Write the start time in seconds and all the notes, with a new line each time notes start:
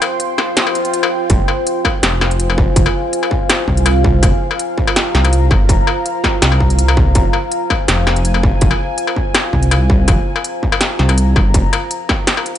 Already playing: F4 C5 G5 C6
0.02 closed hi-hat, struck metal
0.20 closed hi-hat
0.38 snare, struck metal
0.57 snare, closed hi-hat, swell
0.67 struck metal
0.75 closed hi-hat
0.85 closed hi-hat
0.94 closed hi-hat
1.03 struck metal
1.29 F1 F5 G#5, kick, closed hi-hat
1.48 struck metal
1.67 closed hi-hat
1.85 kick, struck metal
2.03 F1, snare, closed hi-hat
2.21 snare, struck metal
2.31 closed hi-hat
2.40 closed hi-hat
2.50 struck metal
2.58 kick
2.76 F1, kick, closed hi-hat
2.86 struck metal
3.13 closed hi-hat
3.23 struck metal
3.31 kick
3.50 snare, closed hi-hat, struck metal
3.68 C2, kick
3.77 closed hi-hat
3.86 closed hi-hat, struck metal
4.04 kick
4.22 F1 A#5, kick, closed hi-hat, struck metal
4.51 struck metal
4.59 closed hi-hat
4.78 kick
4.87 struck metal
4.96 snare, closed hi-hat
5.15 C2, snare
5.25 closed hi-hat, struck metal
5.33 closed hi-hat
5.51 G1, kick, struck metal
5.69 F1, kick, closed hi-hat
5.87 struck metal
6.06 closed hi-hat
6.24 kick, snare, struck metal
6.42 C2, snare, closed hi-hat
6.52 struck metal
6.60 kick
6.70 closed hi-hat
6.79 closed hi-hat
6.88 struck metal
6.97 kick
7.15 F1 G#5, kick, closed hi-hat
7.33 struck metal
7.52 closed hi-hat
7.70 kick, struck metal
7.88 F1, snare, closed hi-hat
8.07 snare, struck metal
8.16 closed hi-hat
8.25 closed hi-hat
8.34 struck metal
8.43 kick
8.61 F1, kick, closed hi-hat
8.71 struck metal
8.98 closed hi-hat
9.07 struck metal
9.16 kick
9.35 snare, closed hi-hat, struck metal
9.53 C2, kick
9.63 closed hi-hat
9.71 closed hi-hat, struck metal
9.90 kick
10.08 F1 A#5, kick, closed hi-hat, struck metal
10.36 struck metal
10.44 closed hi-hat
10.63 kick
10.72 struck metal
10.81 snare, closed hi-hat
10.99 C2, snare
11.09 closed hi-hat, struck metal
11.18 closed hi-hat
11.36 G1, kick, struck metal
11.54 F1, kick, closed hi-hat
11.73 closed hi-hat, struck metal
11.91 closed hi-hat
12.09 kick, snare, struck metal
12.27 snare, closed hi-hat
12.37 struck metal
12.46 closed hi-hat